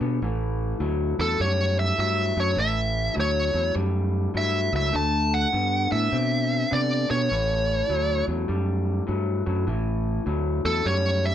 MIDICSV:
0, 0, Header, 1, 4, 480
1, 0, Start_track
1, 0, Tempo, 591133
1, 175, Time_signature, 4, 2, 24, 8
1, 9215, End_track
2, 0, Start_track
2, 0, Title_t, "Lead electric guitar"
2, 0, Program_c, 0, 29
2, 980, Note_on_c, 0, 69, 80
2, 1129, Note_off_c, 0, 69, 0
2, 1148, Note_on_c, 0, 73, 87
2, 1428, Note_off_c, 0, 73, 0
2, 1456, Note_on_c, 0, 76, 92
2, 1617, Note_off_c, 0, 76, 0
2, 1627, Note_on_c, 0, 76, 87
2, 1937, Note_off_c, 0, 76, 0
2, 1947, Note_on_c, 0, 73, 88
2, 2100, Note_on_c, 0, 76, 103
2, 2108, Note_off_c, 0, 73, 0
2, 2541, Note_off_c, 0, 76, 0
2, 2600, Note_on_c, 0, 73, 81
2, 3031, Note_off_c, 0, 73, 0
2, 3552, Note_on_c, 0, 76, 82
2, 3829, Note_off_c, 0, 76, 0
2, 3865, Note_on_c, 0, 76, 85
2, 4010, Note_off_c, 0, 76, 0
2, 4026, Note_on_c, 0, 81, 110
2, 4335, Note_on_c, 0, 78, 84
2, 4336, Note_off_c, 0, 81, 0
2, 4805, Note_off_c, 0, 78, 0
2, 4808, Note_on_c, 0, 76, 89
2, 5465, Note_on_c, 0, 74, 74
2, 5471, Note_off_c, 0, 76, 0
2, 5768, Note_off_c, 0, 74, 0
2, 5771, Note_on_c, 0, 73, 67
2, 6692, Note_off_c, 0, 73, 0
2, 8652, Note_on_c, 0, 69, 75
2, 8821, Note_on_c, 0, 73, 80
2, 8822, Note_off_c, 0, 69, 0
2, 9137, Note_off_c, 0, 73, 0
2, 9138, Note_on_c, 0, 76, 84
2, 9215, Note_off_c, 0, 76, 0
2, 9215, End_track
3, 0, Start_track
3, 0, Title_t, "Clean electric guitar"
3, 0, Program_c, 1, 27
3, 6, Note_on_c, 1, 50, 72
3, 11, Note_on_c, 1, 59, 80
3, 158, Note_off_c, 1, 50, 0
3, 160, Note_off_c, 1, 59, 0
3, 184, Note_on_c, 1, 45, 90
3, 185, Note_on_c, 1, 52, 99
3, 624, Note_off_c, 1, 45, 0
3, 625, Note_off_c, 1, 52, 0
3, 651, Note_on_c, 1, 45, 81
3, 654, Note_on_c, 1, 54, 92
3, 931, Note_off_c, 1, 45, 0
3, 932, Note_off_c, 1, 54, 0
3, 972, Note_on_c, 1, 45, 70
3, 973, Note_on_c, 1, 54, 70
3, 1120, Note_off_c, 1, 45, 0
3, 1120, Note_off_c, 1, 54, 0
3, 1131, Note_on_c, 1, 45, 84
3, 1136, Note_on_c, 1, 55, 84
3, 1576, Note_off_c, 1, 45, 0
3, 1579, Note_off_c, 1, 55, 0
3, 1607, Note_on_c, 1, 45, 83
3, 1613, Note_on_c, 1, 54, 86
3, 1888, Note_off_c, 1, 45, 0
3, 1890, Note_off_c, 1, 54, 0
3, 1922, Note_on_c, 1, 45, 69
3, 1927, Note_on_c, 1, 54, 78
3, 2068, Note_off_c, 1, 45, 0
3, 2076, Note_off_c, 1, 54, 0
3, 2078, Note_on_c, 1, 45, 81
3, 2086, Note_on_c, 1, 52, 89
3, 2529, Note_off_c, 1, 45, 0
3, 2533, Note_off_c, 1, 52, 0
3, 2560, Note_on_c, 1, 45, 77
3, 2564, Note_on_c, 1, 54, 85
3, 2844, Note_off_c, 1, 45, 0
3, 2845, Note_off_c, 1, 54, 0
3, 2867, Note_on_c, 1, 45, 62
3, 2869, Note_on_c, 1, 54, 80
3, 3025, Note_off_c, 1, 45, 0
3, 3026, Note_off_c, 1, 54, 0
3, 3042, Note_on_c, 1, 45, 75
3, 3047, Note_on_c, 1, 55, 94
3, 3490, Note_off_c, 1, 45, 0
3, 3493, Note_off_c, 1, 55, 0
3, 3525, Note_on_c, 1, 45, 72
3, 3529, Note_on_c, 1, 54, 80
3, 3805, Note_off_c, 1, 45, 0
3, 3807, Note_off_c, 1, 54, 0
3, 3838, Note_on_c, 1, 45, 65
3, 3842, Note_on_c, 1, 54, 78
3, 3990, Note_off_c, 1, 45, 0
3, 3992, Note_off_c, 1, 54, 0
3, 3999, Note_on_c, 1, 50, 75
3, 4001, Note_on_c, 1, 57, 90
3, 4449, Note_off_c, 1, 50, 0
3, 4450, Note_off_c, 1, 57, 0
3, 4487, Note_on_c, 1, 50, 83
3, 4495, Note_on_c, 1, 59, 91
3, 4766, Note_off_c, 1, 50, 0
3, 4770, Note_off_c, 1, 59, 0
3, 4794, Note_on_c, 1, 50, 72
3, 4799, Note_on_c, 1, 59, 76
3, 4948, Note_off_c, 1, 50, 0
3, 4951, Note_off_c, 1, 59, 0
3, 4965, Note_on_c, 1, 50, 77
3, 4971, Note_on_c, 1, 60, 86
3, 5412, Note_off_c, 1, 50, 0
3, 5415, Note_off_c, 1, 60, 0
3, 5448, Note_on_c, 1, 59, 88
3, 5450, Note_on_c, 1, 50, 76
3, 5727, Note_off_c, 1, 50, 0
3, 5727, Note_off_c, 1, 59, 0
3, 5763, Note_on_c, 1, 50, 70
3, 5766, Note_on_c, 1, 59, 80
3, 5913, Note_off_c, 1, 50, 0
3, 5914, Note_off_c, 1, 59, 0
3, 5937, Note_on_c, 1, 45, 85
3, 5938, Note_on_c, 1, 52, 88
3, 6378, Note_off_c, 1, 45, 0
3, 6379, Note_off_c, 1, 52, 0
3, 6411, Note_on_c, 1, 45, 78
3, 6414, Note_on_c, 1, 54, 90
3, 6689, Note_off_c, 1, 45, 0
3, 6690, Note_off_c, 1, 54, 0
3, 6721, Note_on_c, 1, 45, 62
3, 6724, Note_on_c, 1, 54, 70
3, 6872, Note_off_c, 1, 45, 0
3, 6874, Note_off_c, 1, 54, 0
3, 6887, Note_on_c, 1, 45, 79
3, 6887, Note_on_c, 1, 55, 93
3, 7334, Note_off_c, 1, 45, 0
3, 7334, Note_off_c, 1, 55, 0
3, 7364, Note_on_c, 1, 45, 75
3, 7371, Note_on_c, 1, 54, 75
3, 7646, Note_off_c, 1, 45, 0
3, 7649, Note_off_c, 1, 54, 0
3, 7684, Note_on_c, 1, 45, 80
3, 7686, Note_on_c, 1, 54, 92
3, 7835, Note_off_c, 1, 45, 0
3, 7836, Note_off_c, 1, 54, 0
3, 7853, Note_on_c, 1, 45, 79
3, 7858, Note_on_c, 1, 52, 91
3, 8298, Note_off_c, 1, 45, 0
3, 8301, Note_off_c, 1, 52, 0
3, 8331, Note_on_c, 1, 45, 86
3, 8337, Note_on_c, 1, 54, 98
3, 8611, Note_off_c, 1, 45, 0
3, 8614, Note_off_c, 1, 54, 0
3, 8647, Note_on_c, 1, 45, 77
3, 8649, Note_on_c, 1, 54, 74
3, 8795, Note_off_c, 1, 45, 0
3, 8799, Note_off_c, 1, 54, 0
3, 8805, Note_on_c, 1, 45, 72
3, 8809, Note_on_c, 1, 55, 84
3, 9215, Note_off_c, 1, 45, 0
3, 9215, Note_off_c, 1, 55, 0
3, 9215, End_track
4, 0, Start_track
4, 0, Title_t, "Fingered electric bass"
4, 0, Program_c, 2, 33
4, 7, Note_on_c, 2, 47, 85
4, 152, Note_off_c, 2, 47, 0
4, 179, Note_on_c, 2, 33, 91
4, 592, Note_off_c, 2, 33, 0
4, 650, Note_on_c, 2, 38, 81
4, 920, Note_off_c, 2, 38, 0
4, 964, Note_on_c, 2, 40, 82
4, 1110, Note_off_c, 2, 40, 0
4, 1137, Note_on_c, 2, 42, 91
4, 1550, Note_off_c, 2, 42, 0
4, 1610, Note_on_c, 2, 43, 87
4, 1879, Note_off_c, 2, 43, 0
4, 1921, Note_on_c, 2, 42, 79
4, 2068, Note_off_c, 2, 42, 0
4, 2085, Note_on_c, 2, 33, 92
4, 2502, Note_off_c, 2, 33, 0
4, 2571, Note_on_c, 2, 38, 84
4, 2839, Note_off_c, 2, 38, 0
4, 2876, Note_on_c, 2, 40, 82
4, 3024, Note_off_c, 2, 40, 0
4, 3049, Note_on_c, 2, 42, 87
4, 3464, Note_off_c, 2, 42, 0
4, 3528, Note_on_c, 2, 43, 79
4, 3796, Note_off_c, 2, 43, 0
4, 3837, Note_on_c, 2, 37, 82
4, 3984, Note_off_c, 2, 37, 0
4, 4011, Note_on_c, 2, 38, 90
4, 4425, Note_off_c, 2, 38, 0
4, 4494, Note_on_c, 2, 43, 80
4, 4759, Note_off_c, 2, 43, 0
4, 4806, Note_on_c, 2, 45, 80
4, 4949, Note_off_c, 2, 45, 0
4, 4972, Note_on_c, 2, 47, 85
4, 5385, Note_off_c, 2, 47, 0
4, 5457, Note_on_c, 2, 48, 86
4, 5721, Note_off_c, 2, 48, 0
4, 5767, Note_on_c, 2, 47, 83
4, 5910, Note_off_c, 2, 47, 0
4, 5939, Note_on_c, 2, 33, 92
4, 6350, Note_off_c, 2, 33, 0
4, 6409, Note_on_c, 2, 38, 80
4, 6677, Note_off_c, 2, 38, 0
4, 6721, Note_on_c, 2, 40, 89
4, 6867, Note_off_c, 2, 40, 0
4, 6895, Note_on_c, 2, 42, 89
4, 7308, Note_off_c, 2, 42, 0
4, 7378, Note_on_c, 2, 43, 84
4, 7643, Note_off_c, 2, 43, 0
4, 7687, Note_on_c, 2, 42, 84
4, 7831, Note_off_c, 2, 42, 0
4, 7854, Note_on_c, 2, 33, 92
4, 8269, Note_off_c, 2, 33, 0
4, 8334, Note_on_c, 2, 38, 81
4, 8602, Note_off_c, 2, 38, 0
4, 8645, Note_on_c, 2, 40, 82
4, 8791, Note_off_c, 2, 40, 0
4, 8815, Note_on_c, 2, 42, 95
4, 9215, Note_off_c, 2, 42, 0
4, 9215, End_track
0, 0, End_of_file